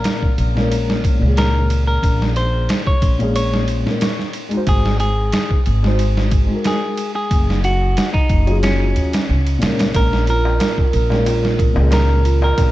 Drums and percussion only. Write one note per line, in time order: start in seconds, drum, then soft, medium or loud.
0.04 snare loud
0.04 ride medium
0.22 kick medium
0.38 ride medium
0.57 snare soft
0.72 ride medium
0.90 snare medium
1.04 kick medium
1.04 ride medium
1.37 snare loud
1.37 ride medium
1.70 ride medium
2.03 kick loud
2.03 ride medium
2.22 snare soft
2.36 ride medium
2.69 snare loud
2.69 ride medium
2.87 kick medium
3.02 kick medium
3.02 ride medium
3.20 ride soft
3.36 ride medium
3.54 snare soft
3.68 ride medium
3.87 snare soft
4.01 snare loud
4.01 ride medium
4.19 snare soft
4.33 ride medium
4.51 ride soft
4.67 kick loud
4.67 ride medium
4.86 snare medium
5.00 ride medium
5.32 snare loud
5.32 ride medium
5.50 kick medium
5.66 ride medium
5.84 snare soft
5.99 ride medium
6.17 snare medium
6.31 kick medium
6.31 ride medium
6.64 snare loud
6.64 ride medium
6.97 ride medium
7.31 kick loud
7.31 ride medium
7.50 snare soft
7.64 ride medium
7.97 snare loud
7.97 ride medium
8.14 kick loud
8.29 kick medium
8.29 ride medium
8.47 ride soft
8.63 snare loud
8.63 ride medium
8.96 ride medium
9.13 snare loud
9.13 ride medium
9.47 ride medium
9.62 snare loud
9.62 ride medium
9.79 snare loud
9.79 ride medium
9.95 kick loud
9.95 ride medium
9.95 darbuka tek medium
10.13 snare medium
10.13 darbuka tek soft
10.27 ride medium
10.45 darbuka tek medium
10.60 snare loud
10.60 ride medium
10.60 darbuka tek medium
10.78 kick medium
10.78 darbuka tek soft
10.93 ride medium
11.10 snare soft
11.10 darbuka tek medium
11.26 ride medium
11.26 darbuka tek medium
11.43 snare medium
11.43 darbuka tek soft
11.59 kick medium
11.59 ride medium
11.76 darbuka tek medium
11.91 snare loud
11.91 ride medium
11.91 darbuka tek medium
12.09 darbuka tek soft
12.25 ride medium
12.42 darbuka tek medium
12.58 kick loud
12.58 ride medium
12.58 darbuka tek medium